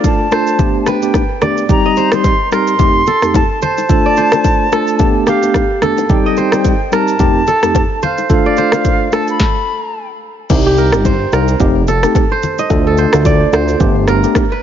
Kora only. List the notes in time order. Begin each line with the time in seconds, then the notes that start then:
Already playing: C5 D5 F5
0.32 C5
0.87 B4
1.42 D5
1.86 D#5
1.97 C5
2.52 A#4
3.07 A4
3.62 C5
4.06 D5
4.17 C5
4.72 A4
5.28 G4
5.83 A4
6.26 D#5
6.37 C5
6.93 A#4
7.48 A4
8.03 C5
8.46 D5
8.58 C5
9.13 A4
10.66 G4
10.78 A#4
11.06 C5
11.33 A#4
11.88 A4
12.32 C5
12.59 D#5
12.87 A4
12.98 C5
13.26 D5
13.53 C5
14.08 A#4
14.52 B4